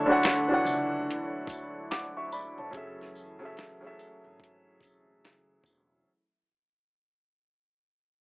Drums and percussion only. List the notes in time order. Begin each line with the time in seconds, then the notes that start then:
0.23 snare, closed hi-hat
0.66 tambourine, shaker
1.10 closed hi-hat
1.47 kick, closed hi-hat, tambourine, shaker
1.91 snare, closed hi-hat
2.32 tambourine, shaker
2.73 kick, closed hi-hat
3.01 snare
3.15 tambourine, shaker
3.57 snare, closed hi-hat
3.99 closed hi-hat, tambourine, shaker
4.40 kick, closed hi-hat
4.81 kick, closed hi-hat, tambourine, shaker
5.24 snare, closed hi-hat
5.64 kick, tambourine, shaker